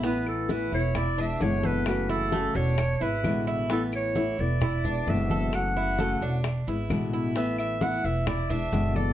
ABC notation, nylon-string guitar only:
X:1
M:4/4
L:1/8
Q:1/4=131
K:A
V:1 name="Nylon-string guitar"
[E,A,B,E]2 [E,A,B,E] [A,B,E] z [G,B,E] [B,,D,G,B,E]2 | [C,E,A,CF]2 [C,E,A,CF] [A,CF] z [G,B,E] [B,,D,G,B,E]2 | [E,A,B,E]2 [E,A,B,E] [A,B,E] z [G,B,E] [B,,D,G,B,E]2 | [C,E,A,CF]2 [C,E,A,CF] [A,CF] z [G,B,E] [B,,D,G,B,E]2 |
[E,A,B,E]2 [E,A,B,E] [A,B,E] z [G,B,E] [B,,D,G,B,E]2 |]